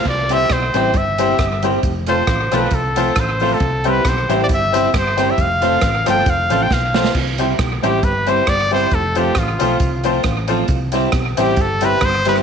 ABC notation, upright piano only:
X:1
M:4/4
L:1/8
Q:"Swing" 1/4=135
K:C
V:1 name="Upright piano"
z [CEGc] z [CEGc] z [CEGc] z [CEGc] | z [CFAc] z [CFAc] z [CFAc] z [CFAc] | z [CEGc] z [CEGc] z [CEGc] z [CEGc] | z [CFAc] z [CFAc] z [CFAc] z [CFAc] |
z [CEGc] z [CEGc] z [CEGc] z [CEGc] | z [CFAc] z [CFAc] z [CFAc] z [CFAc] | z [CEGc] z [CEGc] z [CEGc] z [CEGc] |]